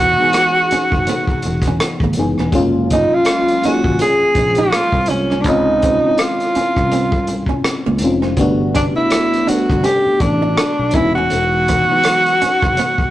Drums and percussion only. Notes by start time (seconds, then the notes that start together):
0.33 cross-stick, closed hi-hat
0.71 closed hi-hat
0.92 kick
1.07 closed hi-hat
1.27 kick
1.42 closed hi-hat
1.62 kick, cross-stick, closed hi-hat
1.80 cross-stick, closed hi-hat
2.00 kick
2.13 closed hi-hat
2.38 cross-stick
2.52 kick, closed hi-hat
2.90 kick, closed hi-hat
3.25 cross-stick, closed hi-hat
3.48 closed hi-hat
3.63 closed hi-hat
3.84 kick
3.99 closed hi-hat
4.35 kick, closed hi-hat
4.55 closed hi-hat
4.73 cross-stick, closed hi-hat
4.92 kick
5.06 closed hi-hat
5.30 cross-stick
5.44 kick, closed hi-hat
5.82 kick, closed hi-hat
6.18 cross-stick, closed hi-hat
6.40 closed hi-hat
6.55 closed hi-hat
6.76 kick, cross-stick
6.91 closed hi-hat
7.12 kick
7.27 closed hi-hat
7.46 kick
7.64 cross-stick, closed hi-hat
7.98 closed hi-hat
8.22 cross-stick
8.37 kick, closed hi-hat
8.75 kick, closed hi-hat
9.10 cross-stick, closed hi-hat
9.33 closed hi-hat
9.48 closed hi-hat
9.70 kick, cross-stick
9.84 closed hi-hat
10.20 kick, closed hi-hat
10.57 cross-stick, closed hi-hat
10.91 kick, closed hi-hat
11.30 closed hi-hat
11.68 kick, closed hi-hat
12.03 cross-stick, closed hi-hat
12.26 closed hi-hat
12.41 closed hi-hat
12.62 kick, cross-stick
12.77 closed hi-hat
12.98 kick